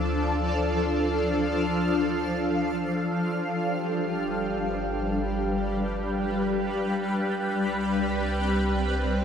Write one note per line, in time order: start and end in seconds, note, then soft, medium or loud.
0.00 3.51 D2 medium
0.00 3.56 F3 medium
0.00 8.48 D4 medium
0.00 4.97 A4 medium
0.00 7.09 F5 medium
3.55 7.05 G1 medium
3.55 9.24 G3 medium
3.55 9.24 G4 medium
3.55 9.24 G5 medium
4.15 9.24 B4 medium
7.09 9.24 C2 medium
7.40 9.24 C4 medium
8.66 9.24 E5 medium